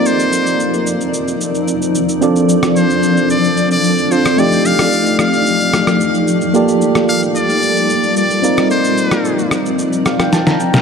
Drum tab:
SH |xxxxxxxxxxxxxxxx|xxxxxxxxxxxxxxxx|xxxxxxxxxxxxxxxx|xxxxxxxxxxxxxxxx|
SD |----------------|---r-----------r|---r--r---rr----|---r-----------r|

SH |xxxxxxxxxxxxxxxx|
SD |---r--r---rroo-o|